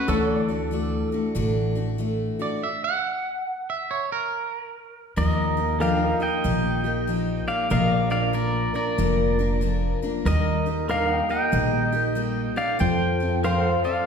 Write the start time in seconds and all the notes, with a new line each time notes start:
0.08 D2 D3 E3 A3 D4 F#4 A4 C#5 F#5
0.29 D5
0.48 A3 D4 F#4
0.71 E3 A3 D4 F#4
1.12 A3 D4 F#4
1.35 A1 D3 E3 A3 D4 F#4
1.75 A3 D4 F#4
1.98 E3 A3 D4 F#4
2.39 A3 D4 F#4 D5
2.63 E5
2.84 F#5
3.70 E5
3.91 C#5
4.12 A#4
5.16 D#2 D#3 F3 A#3 D#4 G4 A#4 D#5
5.57 A#3 D#4 G4
5.80 F3 A#3 D4 D#4 G4 A4 A#4 F5 G5
6.00 D#4 A#4
6.20 A#3 D#4 G4 D#5 G5
6.44 A#1 D#3 F3 A#3 D#4 G4
6.84 A#3 D#4 G4
7.07 F3 A#3 D#4 G4
7.48 A#3 D#4 G4 D5 F5
7.70 A#1 A#2 D3 F3 A#3 D4 A#4 D5 D#5 F5
7.93 D5
8.10 F3 A#3 D4 A#4 D5 F5
8.33 F3 A#3 D4 A#4 D5
8.74 F3 A#3 D4 A#4 D5
8.98 F1 A#2 D3 F3 A#3 D4 A#4
9.39 F3 A#3 D4 A#4
9.61 F3 A#3 D4 A#4
10.02 F3 A#3 D4 A#4
10.26 D#2 D#3 G3 A#3 D#4 G4 A#4 D#5
10.66 A#3 D#4 G4
10.89 G3 A#3 D4 D#4 G4 A#4 F5
11.10 D#4
11.17 G5
11.29 A#3 D#4 G4 D#5 G5
11.52 A#1 D#3 G3 A#3 D#4 G4
11.92 A#3 D#4 G4
12.15 G3 A#3 D#4 G4
12.56 A#3 D#4 G4 D5 F5
12.79 F2 F3 C4 F4 A4 C5 G5
13.20 C4 F4 A4
13.44 F3 C4 F4 A4 A#4 C5 F5 G5
13.64 A4
13.71 F5
13.84 C4 F4 A4 D5 F5